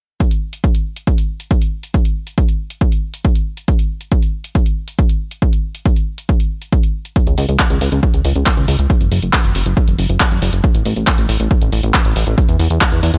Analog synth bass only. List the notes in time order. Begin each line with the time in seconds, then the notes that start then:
7.27 C#2
7.38 C#2
7.49 C#2
7.70 C#2
7.81 C#2
7.92 C#2
8.14 C#2
8.25 C#2
8.36 C#2
8.57 C#2
8.68 C#2
8.79 C#2
9.01 F#1
9.12 F#1
9.22 F#1
9.44 F#1
9.55 F#1
9.66 F#1
9.88 F#1
9.99 F#1
10.09 F#1
10.31 F#1
10.42 F#1
10.53 F#1
10.75 A1
10.86 A1
10.96 A1
11.18 A1
11.29 A1
11.40 A1
11.62 A1
11.73 A1
11.83 A1
12.05 A1
12.16 A1
12.27 A1
12.49 E2
12.60 E2
12.70 E2
12.92 E2
13.03 E2
13.14 E2